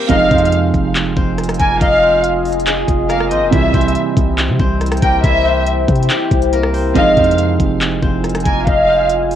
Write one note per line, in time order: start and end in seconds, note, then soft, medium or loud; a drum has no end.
0.00 1.60 A#3 medium
0.00 0.32 C4 medium
0.00 0.16 E4 medium
0.00 1.59 G4 medium
0.00 1.60 A#4 medium
0.00 0.31 C5 medium
0.00 0.16 E5 loud
0.00 0.80 G5 medium
0.09 0.30 F1 loud
0.09 3.48 C3 medium
0.09 3.48 F3 medium
0.09 3.49 G#3 medium
0.09 1.81 D#4 medium
0.09 3.49 D#4 medium
0.09 3.49 F4 medium
0.09 1.81 D#5 loud
0.09 3.49 D#5 medium
0.09 0.50 F5 loud
0.09 3.49 G#5 medium
0.09 kick loud
0.09 closed hi-hat medium
0.31 0.72 F2 loud
0.31 1.17 C4 medium
0.31 1.16 C5 medium
0.31 kick loud
0.31 closed hi-hat soft
0.38 closed hi-hat medium
0.45 closed hi-hat medium
0.52 closed hi-hat medium
0.74 1.15 F1 loud
0.74 kick loud
0.74 closed hi-hat medium
0.95 clap loud
0.95 closed hi-hat medium
1.16 1.58 F1 loud
1.16 2.03 C4 medium
1.16 2.02 C5 medium
1.16 kick loud
1.38 cross-stick medium
1.38 closed hi-hat medium
1.44 closed hi-hat medium
1.49 cross-stick medium
1.49 closed hi-hat medium
1.54 closed hi-hat medium
1.60 1.80 F1 loud
1.60 3.09 A#3 medium
1.60 3.09 A#4 medium
1.60 1.80 G#5 loud
1.60 kick medium
1.60 closed hi-hat medium
1.81 2.84 F1 loud
1.81 3.59 D#4 medium
1.81 3.59 D#5 loud
1.81 2.21 F5 loud
1.81 kick loud
1.81 closed hi-hat medium
2.02 3.31 C4 medium
2.02 3.30 C5 medium
2.24 closed hi-hat medium
2.45 closed hi-hat soft
2.45 open hi-hat medium
2.53 closed hi-hat medium
2.60 closed hi-hat medium
2.67 4.94 G#4 medium
2.67 4.17 G#5 medium
2.67 clap loud
2.67 closed hi-hat medium
2.88 3.33 F1 loud
2.88 kick loud
2.88 closed hi-hat medium
3.09 5.03 A#3 medium
3.09 5.02 A#4 medium
3.09 3.30 F5 medium
3.09 cross-stick medium
3.09 closed hi-hat medium
3.20 cross-stick medium
3.31 3.43 G#1 loud
3.31 3.74 C4 medium
3.31 3.74 C5 medium
3.31 3.51 D#5 medium
3.31 closed hi-hat medium
3.42 3.52 F1 loud
3.51 3.73 C2 loud
3.51 6.91 C3 medium
3.51 6.91 E3 medium
3.51 6.92 G3 medium
3.51 6.92 E4 medium
3.51 5.24 E4 medium
3.51 6.92 E4 medium
3.51 6.92 C5 medium
3.51 5.24 E5 loud
3.51 3.93 E5 loud
3.51 6.92 G5 medium
3.51 kick loud
3.51 closed hi-hat medium
3.74 3.95 C2 loud
3.74 4.60 C4 medium
3.74 4.59 C5 medium
3.74 kick loud
3.74 closed hi-hat soft
3.81 closed hi-hat medium
3.88 closed hi-hat medium
3.95 closed hi-hat medium
4.17 4.50 C2 loud
4.17 kick loud
4.17 closed hi-hat medium
4.38 clap loud
4.38 closed hi-hat medium
4.49 4.59 C3 loud
4.60 5.01 C2 loud
4.60 5.45 C4 medium
4.60 5.45 C5 medium
4.60 kick loud
4.81 cross-stick medium
4.81 closed hi-hat medium
4.86 closed hi-hat medium
4.92 cross-stick loud
4.92 closed hi-hat medium
4.97 closed hi-hat medium
5.02 5.23 C2 loud
5.02 6.53 A#3 medium
5.02 6.53 A#4 medium
5.02 5.23 G5 loud
5.02 kick medium
5.02 closed hi-hat medium
5.24 5.86 C2 loud
5.24 7.01 E4 medium
5.24 7.01 E5 loud
5.24 5.64 E5 loud
5.24 kick loud
5.24 closed hi-hat medium
5.45 6.74 C4 medium
5.45 6.73 C5 medium
5.67 closed hi-hat medium
5.88 6.09 C3 loud
5.88 kick loud
5.88 closed hi-hat soft
5.95 closed hi-hat medium
6.03 closed hi-hat medium
6.10 8.45 G4 medium
6.10 7.66 G5 medium
6.10 clap loud
6.10 closed hi-hat medium
6.31 6.93 C2 loud
6.31 kick medium
6.31 closed hi-hat medium
6.42 closed hi-hat medium
6.53 8.46 A#3 medium
6.53 8.45 A#4 medium
6.53 closed hi-hat medium
6.63 cross-stick loud
6.74 7.17 C4 medium
6.74 7.17 C5 medium
6.74 open hi-hat medium
6.94 7.16 F1 loud
6.94 9.35 C3 medium
6.94 9.35 F3 medium
6.94 9.35 G#3 medium
6.94 8.67 D#4 medium
6.94 9.35 D#4 medium
6.94 9.35 F4 medium
6.94 8.67 D#5 loud
6.94 9.35 D#5 medium
6.94 7.36 F5 loud
6.94 9.35 G#5 medium
6.94 kick loud
6.94 closed hi-hat medium
7.17 7.58 F2 loud
7.17 8.03 C4 medium
7.17 8.02 C5 medium
7.17 kick loud
7.17 closed hi-hat soft
7.24 closed hi-hat medium
7.31 closed hi-hat medium
7.38 closed hi-hat medium
7.60 8.01 F1 loud
7.60 kick loud
7.60 closed hi-hat medium
7.81 clap loud
7.81 closed hi-hat medium
8.02 8.44 F1 loud
8.02 8.89 C4 medium
8.02 8.88 C5 medium
8.02 kick loud
8.24 cross-stick medium
8.24 closed hi-hat medium
8.29 closed hi-hat medium
8.35 cross-stick medium
8.35 closed hi-hat medium
8.40 closed hi-hat medium
8.45 8.66 F1 loud
8.45 9.35 A#3 medium
8.45 9.35 A#4 medium
8.45 8.66 G#5 medium
8.45 kick medium
8.45 closed hi-hat medium
8.67 9.35 F1 loud
8.67 9.35 D#4 medium
8.67 9.35 D#5 loud
8.67 9.07 F5 loud
8.67 kick loud
8.67 closed hi-hat medium
8.88 9.35 C4 medium
8.88 9.35 C5 medium
9.09 closed hi-hat medium
9.31 closed hi-hat soft
9.31 open hi-hat medium